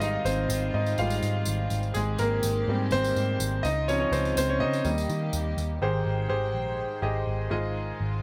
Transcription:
0.00 0.17 G#1 medium
0.00 1.91 D#3 medium
0.00 0.99 G3 medium
0.00 1.00 G#3 medium
0.00 4.82 C4 medium
0.00 0.02 D#4 medium
0.00 0.24 D#4 medium
0.00 1.00 F4 medium
0.00 1.94 F4 medium
0.00 0.23 D#5 loud
0.00 0.99 F5 medium
0.00 tambourine medium
0.25 0.45 G#1 loud
0.25 0.71 C4 medium
0.25 0.75 C5 medium
0.25 tambourine medium
0.49 0.69 G#1 loud
0.49 tambourine medium
0.74 0.94 G#2 loud
0.74 0.97 D#4 medium
0.74 0.99 D#5 medium
0.86 tambourine soft
0.98 1.18 G#1 loud
0.98 1.21 G3 medium
0.98 1.21 G#3 medium
0.98 1.21 D#4 medium
0.98 1.68 F4 medium
0.98 1.67 F5 medium
0.98 tambourine medium
1.10 tambourine soft
1.22 1.42 G#2 loud
1.22 tambourine medium
1.45 1.67 G#1 loud
1.45 tambourine medium
1.70 1.91 G#1 medium
1.70 tambourine medium
1.83 tambourine soft
1.93 2.15 G#1 loud
1.93 3.62 D#3 medium
1.93 2.18 G#3 medium
1.93 3.62 G4 medium
1.93 2.19 G#4 medium
1.93 tambourine medium
2.18 2.39 G#1 loud
2.18 2.68 A#3 medium
2.18 2.88 A#4 loud
2.18 tambourine soft
2.43 2.64 G#1 loud
2.43 tambourine medium
2.68 2.93 G#2 loud
2.68 3.61 G3 medium
2.68 3.61 A#3 soft
2.68 2.93 C4 medium
2.91 3.11 G#1 loud
2.91 3.62 C4 medium
2.91 3.61 C5 loud
2.91 tambourine soft
3.04 tambourine soft
3.16 3.36 G#2 loud
3.16 tambourine soft
3.40 3.60 G#1 loud
3.40 tambourine medium
3.63 4.04 C#2 loud
3.63 4.84 C#3 medium
3.63 3.87 D#4 medium
3.63 4.84 F4 medium
3.63 3.89 D#5 loud
3.63 tambourine soft
3.88 4.21 F3 medium
3.88 4.13 C4 medium
3.88 3.99 C#4 medium
3.88 4.22 D#4 medium
3.88 3.98 C#5 loud
3.88 tambourine medium
4.00 4.12 C#4 medium
4.00 4.13 C#5 medium
4.12 4.32 C#2 loud
4.12 4.36 C4 medium
4.12 4.35 C5 medium
4.12 tambourine medium
4.25 tambourine soft
4.36 4.62 C#2 loud
4.36 4.49 C4 medium
4.36 4.50 C5 loud
4.36 tambourine loud
4.49 4.61 C#4 medium
4.49 4.62 C#5 medium
4.60 4.81 C#3 medium
4.60 4.85 D#4 medium
4.60 5.29 D#5 loud
4.73 tambourine soft
4.85 5.05 D#2 loud
4.85 5.81 D#3 medium
4.85 5.54 G3 medium
4.85 5.81 G3 medium
4.85 5.54 A#3 medium
4.85 5.82 A#3 medium
4.85 5.55 D#4 medium
4.85 5.81 G4 medium
4.85 tambourine soft
4.98 tambourine medium
5.09 5.29 D#3 loud
5.09 tambourine medium
5.33 5.53 D#2 loud
5.33 tambourine medium
5.57 5.78 D#2 medium
5.57 tambourine medium
5.82 6.02 G#1 medium
5.82 6.51 G#2 medium
5.82 6.51 D#3 medium
5.82 8.22 D#3 medium
5.82 8.22 G#3 medium
5.82 6.27 G4 medium
5.82 6.28 G#4 medium
5.82 6.28 C5 medium
5.82 8.22 C5 medium
5.82 7.51 G5 medium
6.06 6.26 G#1 medium
6.29 6.55 G#1 medium
6.29 6.99 G4 medium
6.29 6.99 G#4 medium
6.29 6.99 C5 medium
6.55 6.85 A#1 medium
7.02 7.23 G#1 medium
7.02 7.51 G4 medium
7.02 7.49 G#4 medium
7.02 7.50 D#5 medium
7.27 7.47 G#1 medium
7.50 7.91 G#1 medium
7.50 8.20 G#2 medium
7.50 8.20 G#3 medium
7.50 8.20 F4 medium
7.50 8.22 F4 medium
7.50 8.20 G#4 medium
7.50 8.20 D#5 medium
8.01 8.20 G#1 medium

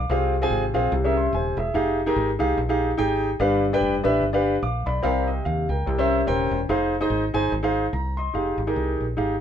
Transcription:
0.00 0.32 D6 medium
0.09 0.45 C2 loud
0.09 0.71 C3 medium
0.09 0.34 C4 medium
0.09 0.34 F4 medium
0.09 0.34 G#4 medium
0.09 0.34 F5 medium
0.42 0.63 C4 medium
0.42 0.63 F4 medium
0.42 0.63 G#4 medium
0.42 0.64 G#5 medium
0.50 0.71 G#1 medium
0.74 0.89 A#1 medium
0.74 0.92 C4 medium
0.74 0.92 F4 medium
0.74 0.92 G#4 medium
0.74 0.92 F5 medium
0.92 1.27 C2 loud
0.92 1.54 C3 medium
1.04 1.25 C#4 medium
1.04 1.16 G#4 medium
1.04 1.16 A#4 medium
1.04 1.16 E5 medium
1.17 1.34 E5 soft
1.17 1.33 C6 medium
1.33 1.53 D#1 medium
1.33 1.57 C5 medium
1.33 1.57 G#5 medium
1.57 1.72 E1 medium
1.57 1.73 G#4 soft
1.57 1.97 E5 medium
1.74 2.10 F1 medium
1.74 1.99 D#4 medium
1.74 1.99 G4 medium
1.74 1.99 G#4 medium
1.74 1.99 F5 medium
2.06 2.28 D#4 medium
2.06 2.28 G4 medium
2.06 2.28 G#4 medium
2.06 2.28 A#4 loud
2.16 2.36 G#1 medium
2.39 2.55 C2 medium
2.39 2.57 D#4 medium
2.39 2.57 G4 medium
2.39 2.57 G#4 medium
2.39 2.57 F5 medium
2.57 2.92 A#1 medium
2.69 2.90 D#4 medium
2.69 2.90 G4 medium
2.69 2.90 G#4 medium
2.69 2.90 F5 medium
2.97 3.34 G#1 medium
2.97 3.28 D#4 medium
2.97 3.28 G4 medium
2.97 3.28 G#4 medium
2.97 3.28 G5 loud
3.40 3.74 G1 loud
3.40 4.01 G2 medium
3.40 3.64 D4 medium
3.40 3.64 G4 medium
3.40 3.64 B4 medium
3.40 3.64 F5 medium
3.73 3.94 D4 medium
3.73 3.94 G4 medium
3.73 3.94 B4 medium
3.73 3.94 G5 medium
3.81 4.01 F1 medium
4.03 4.19 A1 medium
4.03 4.22 D4 medium
4.03 4.22 G4 medium
4.03 4.22 B4 medium
4.03 4.22 E5 medium
4.22 4.57 G1 medium
4.33 4.54 D4 medium
4.33 4.54 G4 medium
4.33 4.55 B4 medium
4.33 4.55 F5 medium
4.62 4.83 A#1 medium
4.62 4.86 F5 medium
4.62 4.86 D6 medium
4.86 5.01 B1 medium
4.86 5.26 D5 medium
4.86 5.26 B5 medium
5.02 5.39 C2 loud
5.02 5.65 C3 medium
5.02 5.28 C4 medium
5.02 5.27 G4 medium
5.02 5.28 A#4 medium
5.02 5.28 F5 medium
5.27 5.45 G4 medium
5.27 5.44 D#5 medium
5.45 5.66 D#2 medium
5.45 5.68 F5 medium
5.69 5.84 C#2 medium
5.69 5.97 A#4 medium
5.69 6.09 G5 medium
5.86 6.22 C2 loud
5.86 6.48 C3 medium
5.98 6.20 C#4 medium
5.98 6.20 A#4 medium
5.98 6.20 C5 medium
5.98 6.20 E5 medium
6.27 6.48 D#1 medium
6.27 6.58 C#4 medium
6.27 6.58 A#4 medium
6.27 6.58 C5 medium
6.27 6.58 G5 medium
6.51 6.66 E1 medium
6.69 7.04 F1 loud
6.69 6.93 D#4 medium
6.69 6.93 G#4 medium
6.69 6.94 C5 medium
6.69 6.94 F5 medium
7.01 7.22 D#4 medium
7.01 7.23 G#4 medium
7.01 7.23 C5 medium
7.01 7.23 D#5 medium
7.10 7.31 G#1 medium
7.34 7.49 G1 medium
7.34 7.52 D#4 medium
7.34 7.52 G#4 medium
7.34 7.52 C5 medium
7.34 7.52 G#5 medium
7.52 7.87 G#1 loud
7.63 7.84 D#4 medium
7.63 7.85 G#4 medium
7.63 7.85 C5 medium
7.63 7.85 F5 medium
7.93 8.28 C2 medium
7.93 8.16 A#5 medium
8.17 8.57 D#5 medium
8.17 8.57 C6 medium
8.34 8.55 F1 medium
8.34 8.59 D#4 medium
8.34 8.59 G4 medium
8.34 8.59 G#4 medium
8.34 8.59 F5 medium
8.58 8.73 G#1 medium
8.67 9.04 D#4 medium
8.67 9.03 G4 medium
8.67 9.04 G#4 medium
8.67 9.04 A#4 medium
8.76 8.97 C2 medium
9.00 9.15 A#1 medium
9.17 9.38 G#1 medium
9.17 9.34 D#4 medium
9.17 9.34 G4 medium
9.17 9.34 G#4 medium
9.17 9.34 F5 medium

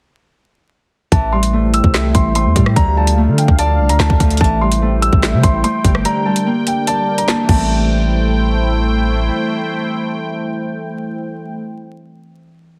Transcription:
1.12 1.81 A1 loud
1.12 2.81 E3 loud
1.12 2.75 A3 medium
1.12 2.75 E4 medium
1.12 2.75 C5 medium
1.12 2.75 G5 medium
1.12 1.30 A5 medium
1.12 kick loud
1.12 closed hi-hat medium
1.32 2.55 G3 medium
1.32 1.71 C6 medium
1.43 closed hi-hat medium
1.53 2.35 A3 medium
1.74 2.12 E6 medium
1.74 closed hi-hat medium
1.84 2.13 C2 loud
1.84 kick loud
1.94 3.03 E4 loud
1.94 snare loud
1.94 clap medium
2.15 2.47 A1 loud
2.15 2.33 C6 medium
2.15 kick loud
2.15 closed hi-hat medium
2.35 3.17 A3 medium
2.35 2.74 C6 medium
2.35 closed hi-hat medium
2.46 2.55 E2 loud
2.56 2.76 A2 loud
2.56 2.81 G3 medium
2.56 kick loud
2.56 closed hi-hat medium
2.66 cross-stick loud
2.76 3.29 D2 loud
2.76 4.46 D3 medium
2.76 4.39 D3 medium
2.76 4.39 D4 medium
2.76 4.39 A4 medium
2.76 4.39 F5 medium
2.76 2.94 A#5 loud
2.76 kick loud
2.76 closed hi-hat medium
2.97 4.19 F3 medium
2.97 3.15 A5 medium
3.07 closed hi-hat medium
3.18 3.99 A3 medium
3.28 3.47 D3 medium
3.38 3.56 G5 medium
3.38 closed hi-hat medium
3.48 3.81 D2 loud
3.48 kick loud
3.59 5.43 D5 loud
3.59 3.88 A5 loud
3.59 closed hi-hat medium
3.79 3.91 C2 loud
3.89 3.99 D2 loud
3.89 3.98 A#5 medium
3.89 closed hi-hat medium
3.99 4.09 D2 loud
3.99 4.81 A3 medium
3.99 4.38 A5 medium
3.99 snare loud
3.99 clap loud
4.10 4.20 D2 loud
4.10 kick loud
4.20 4.40 D2 loud
4.20 4.46 F3 medium
4.20 kick loud
4.20 closed hi-hat medium
4.31 closed hi-hat medium
4.37 5.10 A1 loud
4.37 6.10 E3 medium
4.37 6.04 A3 medium
4.37 6.03 E4 medium
4.37 6.03 C5 medium
4.37 7.46 G5 medium
4.37 4.59 A5 loud
4.37 kick loud
4.37 closed hi-hat medium
4.44 closed hi-hat medium
4.61 5.83 G3 medium
4.61 5.00 C6 medium
4.72 closed hi-hat medium
4.82 5.64 A3 medium
5.02 5.41 E6 medium
5.02 closed hi-hat medium
5.13 5.35 A1 loud
5.13 kick loud
5.23 7.84 E4 loud
5.23 snare loud
5.23 clap medium
5.33 5.43 C3 loud
5.43 5.63 A1 loud
5.43 5.61 C6 medium
5.43 kick loud
5.43 closed hi-hat medium
5.64 6.52 A3 medium
5.64 6.03 C6 medium
5.64 closed hi-hat medium
5.84 6.05 G1 loud
5.84 6.10 G3 medium
5.84 kick loud
5.84 closed hi-hat medium
5.95 cross-stick loud
6.05 7.54 D3 loud
6.05 7.47 G3 medium
6.05 7.47 D4 medium
6.05 7.47 A#4 medium
6.05 6.23 A#5 loud
6.05 closed hi-hat medium
6.25 7.46 G3 medium
6.25 6.44 A5 medium
6.36 closed hi-hat medium
6.46 7.28 A#3 medium
6.67 6.85 G5 medium
6.67 closed hi-hat medium
6.87 8.72 D5 loud
6.87 7.16 A5 loud
6.87 closed hi-hat medium
7.18 7.27 A#5 medium
7.18 closed hi-hat medium
7.28 7.57 A#3 medium
7.28 7.48 A5 medium
7.28 snare loud
7.28 clap loud
7.43 11.55 E3 medium
7.47 9.30 A1 loud
7.47 11.59 G3 medium
7.47 11.61 A3 medium
7.47 11.61 E4 medium
7.47 11.61 C5 medium
7.47 11.61 G5 medium
7.47 8.89 A5 medium
7.47 kick loud
7.47 crash medium
7.51 11.63 A3 medium
7.55 11.67 C4 medium

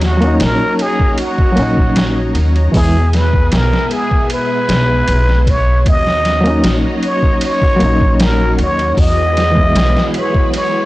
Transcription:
0.00 0.37 D#2 loud
0.00 2.71 F#4 medium
0.00 0.43 F#4 loud
0.00 2.71 C#5 medium
0.00 2.71 D#5 medium
0.00 2.71 A#5 medium
0.00 snare soft
0.00 ride medium
0.17 1.50 F#3 medium
0.17 1.52 A#3 medium
0.22 1.54 C#4 medium
0.22 ride soft
0.27 1.55 D#4 loud
0.40 0.58 A#1 medium
0.40 0.83 A#4 loud
0.40 snare loud
0.40 ride medium
0.79 1.19 G#4 loud
0.79 ride medium
0.99 kick medium
1.18 2.32 F#4 medium
1.18 ride medium
1.38 kick loud
1.53 2.69 F#3 medium
1.53 2.71 A#3 medium
1.57 2.31 A#1 medium
1.57 2.73 C#4 medium
1.57 ride medium
1.62 2.74 D#4 medium
1.77 kick medium
1.96 snare loud
1.96 ride medium
2.35 2.69 D#2 loud
2.35 ride medium
2.56 ride soft
2.72 3.49 E2 loud
2.72 2.97 E3 medium
2.72 2.98 G#3 medium
2.72 5.83 B3 medium
2.72 2.98 B3 medium
2.72 5.83 G#4 medium
2.72 5.83 E5 medium
2.72 5.82 G#5 medium
2.72 kick loud
2.72 open hi-hat medium
2.76 2.99 E4 medium
2.76 3.17 G#4 loud
3.13 3.55 B4 medium
3.13 snare soft
3.13 ride medium
3.33 kick loud
3.52 3.70 B1 medium
3.52 3.95 A#4 loud
3.52 snare loud
3.52 ride medium
3.73 snare medium
3.91 4.31 G#4 loud
3.91 ride medium
4.11 kick medium
4.30 5.51 B4 loud
4.30 ride medium
4.69 5.03 B1 medium
4.69 snare loud
4.69 ride medium
5.08 5.82 B1 loud
5.08 ride medium
5.29 snare soft
5.47 5.87 C#5 loud
5.47 kick loud
5.47 ride medium
5.84 6.60 D#2 loud
5.84 10.85 F#3 medium
5.84 10.85 F#4 medium
5.84 8.94 F#4 medium
5.84 8.94 C#5 medium
5.84 8.94 D#5 medium
5.84 6.73 D#5 loud
5.84 8.94 A#5 medium
5.84 kick loud
5.84 ride medium
6.07 snare soft
6.25 snare soft
6.25 ride medium
6.41 7.74 F#3 medium
6.41 7.75 A#3 medium
6.46 7.77 C#4 medium
6.46 ride soft
6.50 7.79 D#4 loud
6.64 6.82 A#1 medium
6.64 snare loud
6.64 ride medium
7.03 7.40 C#5 loud
7.03 ride medium
7.23 kick medium
7.41 8.24 C#5 loud
7.41 ride medium
7.62 kick medium
7.76 8.93 F#3 medium
7.76 8.94 A#3 medium
7.80 8.55 A#1 medium
7.80 8.96 C#4 medium
7.80 ride medium
7.86 8.98 D#4 medium
8.01 kick medium
8.20 8.60 A#4 loud
8.20 snare loud
8.20 ride medium
8.59 8.93 D#2 medium
8.59 9.02 C#5 loud
8.59 ride medium
8.79 ride soft
8.97 9.72 E2 loud
8.97 10.85 E4 medium
8.97 10.85 G#4 medium
8.97 10.85 B4 medium
8.97 10.16 D#5 loud
8.97 10.85 B5 medium
8.97 kick loud
8.97 open hi-hat medium
9.37 snare soft
9.37 ride medium
9.51 10.85 E3 medium
9.51 10.85 G#3 medium
9.57 10.85 B3 medium
9.57 kick medium
9.61 10.85 E4 medium
9.75 9.93 B1 medium
9.75 snare loud
9.75 ride medium
9.97 snare medium
10.14 10.52 C#5 loud
10.14 ride medium
10.34 kick medium
10.54 10.85 C#5 loud
10.54 ride medium

